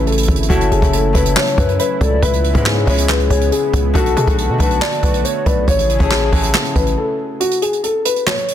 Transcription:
Already playing: 808-style bass A1, analog synth pad C#3 A3 E4 G#4, harp A3 B3 C#4 E4 F#4
0.07 grand piano A4, closed hi-hat
0.12 closed hi-hat
0.18 closed hi-hat
0.23 closed hi-hat
0.28 808-style bass G#1, kick, closed hi-hat
0.36 closed hi-hat
0.43 closed hi-hat
0.48 808-style bass F#1, harp F#3 A3 C#4 E4, analog synth pad F#3, grand piano F#4, soft synth lead A4, kick, closed hi-hat
0.61 closed hi-hat
0.71 808-style bass F#1, grand piano G#4, closed hi-hat
0.81 808-style bass F#1, harp F#3 A3 C#4 E4, kick, closed hi-hat
0.93 grand piano A4, closed hi-hat
1.13 808-style bass F#1, harp F#3 A3 C#4 E4, grand piano B4, kick, closed hi-hat
1.25 closed hi-hat
1.36 grand piano C#5, snare, clap
1.47 closed hi-hat
1.58 808-style bass F#2, soft synth lead B4, kick, closed hi-hat
1.69 closed hi-hat
1.79 grand piano B4, soft synth lead C#5, closed hi-hat
2.01 808-style bass C#2, grand piano A4, soft synth lead D5, kick, closed hi-hat
2.22 808-style bass C#2, analog synth pad G#3 B3, grand piano B4, soft synth lead E5, kick, closed hi-hat
2.33 closed hi-hat
2.44 closed hi-hat
2.54 808-style bass G#2, harp G#3 B3 C#4 E4, grand piano B4, kick, closed hi-hat
2.66 snare, clap
2.86 808-style bass C#2, harp G#3 B3 C#4 E4, grand piano C#5, kick, open hi-hat
2.98 closed hi-hat
3.09 grand piano B4, snare, clap
3.20 closed hi-hat
3.30 808-style bass C#2, grand piano G#4, soft synth lead C#5, kick, closed hi-hat
3.41 closed hi-hat
3.52 grand piano G#4, closed hi-hat
3.73 808-style bass C#2, kick, closed hi-hat
3.94 808-style bass B1, analog synth pad D3 A3 F#4, harp A3 B3 D4 F#4, grand piano F#4, soft synth lead A4, kick, closed hi-hat
4.06 closed hi-hat
4.17 808-style bass B2, grand piano G#4, closed hi-hat
4.26 808-style bass B1, harp A3 B3 D4 F#4, kick, closed hi-hat
4.38 grand piano A4, closed hi-hat
4.49 808-style bass B2
4.58 808-style bass B1, harp A3 B3 D4 F#4, grand piano B4, kick, closed hi-hat
4.71 closed hi-hat
4.81 grand piano D5, snare, clap
4.92 closed hi-hat
5.03 808-style bass B1, soft synth lead B4, kick, closed hi-hat
5.14 closed hi-hat
5.25 soft synth lead C#5, grand piano C#5, closed hi-hat
5.46 808-style bass B1, grand piano B4, soft synth lead D5, kick, closed hi-hat
5.68 808-style bass A1, analog synth pad C#3 E4 G#4, soft synth lead C#5, grand piano C#5, kick, closed hi-hat
5.79 closed hi-hat
5.89 closed hi-hat
5.98 808-style bass A1, harp A3 C#4 E4 G#4, kick, closed hi-hat
6.11 snare, clap
6.31 808-style bass A1, harp A3 C#4 E4 F#4, grand piano G#4, kick, open hi-hat
6.43 closed hi-hat
6.54 snare, clap
6.65 closed hi-hat
6.76 808-style bass A1, grand piano B4, kick, closed hi-hat
6.87 closed hi-hat
6.97 grand piano A4
7.40 grand piano F#4, closed hi-hat
7.51 closed hi-hat
7.62 grand piano G#4, closed hi-hat
7.73 closed hi-hat
7.84 grand piano A4, closed hi-hat
8.05 grand piano B4, closed hi-hat
8.16 closed hi-hat
8.27 grand piano C#5, snare, clap
8.38 closed hi-hat
8.48 closed hi-hat

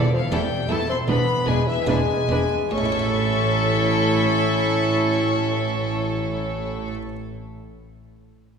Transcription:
Already playing: harpsichord E2, bassoon D3, violin section D5
0.13 bassoon F3, violin section F5
0.31 double bass section E1, cello section E2, harpsichord E2 A3 E4 B4, bassoon G3, viola section E4, violin section A4 G5
0.69 double bass section E1, harpsichord E2, cello section E2, bassoon A3, viola section E4, violin section A4 A5
0.89 bassoon C4, violin section C6
1.08 double bass section E1, harpsichord E2, cello section E2, bassoon B3, viola section D4, violin section B4 B5
1.46 double bass section E1, harpsichord E2, cello section E2, bassoon G#3, viola section D4, violin section B4 G#5
1.67 bassoon E3, violin section E5
1.87 double bass section E1, harpsichord E2 B3 D4 B4, cello section E2, bassoon G#3, viola section D4, violin section B4 G#5
2.29 double bass section E1, harpsichord E2, cello section E2, viola section D4, violin section B4
2.71 double bass section A1, harpsichord A2, cello section A2, bassoon C#4, viola section E4, violin section A4 C#6
2.78 harpsichord A3
2.85 harpsichord E4
2.92 harpsichord C#5
2.99 harpsichord E5

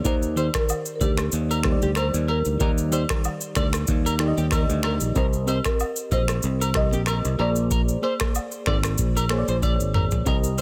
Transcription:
0.04 fingered electric bass D#2, fm electric piano D#3 D#4 G4 D5, clean electric guitar A#4, marimba C5, kick, shaker
0.23 shaker
0.36 fm electric piano D#3 D#4 G4 C5, clean electric guitar C5, high agogo, shaker
0.54 marimba A#4, finger snap, kick, cross-stick, shaker
0.69 low woodblock, shaker
0.86 shaker
0.96 marimba A#4
1.01 fingered electric bass D2, marimba G4, clean electric guitar D5, kick, high agogo, shaker
1.17 finger snap, cross-stick, shaker
1.32 fingered electric bass D#2, shaker
1.51 clean electric guitar A#4, high agogo, shaker
1.63 fm electric piano G3 D#4 G4 C5, finger snap, kick, cross-stick
1.72 fm electric piano D5
1.82 fingered electric bass D2, clean electric guitar G4, shaker
1.95 clean electric guitar A#4, marimba C5, finger snap, cross-stick, high agogo, shaker
2.14 fingered electric bass D#2, shaker
2.28 clean electric guitar A#4, marimba A#4, high agogo
2.45 fingered electric bass D2, shaker
2.59 fingered electric bass D#2, fm electric piano D#3 D#4 G4 D5, clean electric guitar A#4, kick, shaker
2.78 shaker
2.91 fm electric piano D#3 D#4 G4 D5, clean electric guitar C5, high agogo, shaker
3.09 finger snap, kick, cross-stick, shaker
3.24 low woodblock, shaker
3.41 shaker
3.55 fingered electric bass D2, clean electric guitar D5, finger snap, kick, cross-stick, high agogo, shaker
3.73 finger snap, cross-stick, shaker
3.87 fingered electric bass D#2, kick, shaker
4.06 clean electric guitar A#4, high agogo, shaker
4.19 fm electric piano D#3 D#4 G4 D5, finger snap, cross-stick
4.28 fm electric piano D#5
4.37 fingered electric bass D#2, clean electric guitar G4, shaker
4.51 clean electric guitar A#4, finger snap, kick, cross-stick, high agogo, shaker
4.69 fingered electric bass D2, shaker
4.83 clean electric guitar A#4, finger snap, cross-stick, high agogo
5.00 fingered electric bass A#1, shaker
5.15 fingered electric bass C2, fm electric piano C4 G4 A#4 D#5, clean electric guitar A#4, marimba C5, kick, shaker
5.33 shaker
5.46 fm electric piano C4 G4 A#4 D#5, clean electric guitar C5, high agogo, shaker
5.65 marimba A#4, finger snap, kick, cross-stick, shaker
5.80 low woodblock, shaker
5.96 shaker
6.11 fingered electric bass A#1, marimba C5, clean electric guitar D#5, kick, high agogo, shaker
6.28 finger snap, cross-stick, shaker
6.42 fingered electric bass C2, shaker
6.61 clean electric guitar A#4, high agogo, shaker
6.74 fm electric piano C4 G4 A#4 D#5, marimba D#5, finger snap, kick, cross-stick
6.93 fingered electric bass A#1, clean electric guitar G4, shaker
7.06 clean electric guitar A#4, finger snap, cross-stick, high agogo, shaker
7.25 fingered electric bass C2, shaker
7.38 fingered electric bass A#1, fm electric piano A#3 G#4 C5 D5, clean electric guitar A#4, marimba D5, high agogo
7.56 shaker
7.71 clean electric guitar A#4, kick, shaker
7.88 shaker
8.02 fm electric piano A#3 G#4 C5 D5, clean electric guitar C5, high agogo
8.20 finger snap, kick, cross-stick, shaker
8.35 low woodblock, shaker
8.52 shaker
8.66 fingered electric bass G#1, clean electric guitar D5, finger snap, kick, cross-stick, high agogo
8.83 finger snap, cross-stick, shaker
8.98 fingered electric bass A#1, kick, shaker
9.17 clean electric guitar A#4, high agogo, shaker
9.29 fm electric piano A#3 G#4 C5 C#5, finger snap, cross-stick
9.38 fm electric piano D5
9.48 fingered electric bass A#1, clean electric guitar C5, shaker
9.62 clean electric guitar D5, kick, high tom, high agogo, shaker
9.80 fingered electric bass G#1, shaker
9.94 clean electric guitar A#4, mid tom, high agogo
10.11 fingered electric bass A#1, floor tom, shaker
10.25 fingered electric bass C2, fm electric piano C4 G4 A#4 D#5, clean electric guitar A#4, kick, shaker
10.44 shaker
10.58 high agogo, shaker

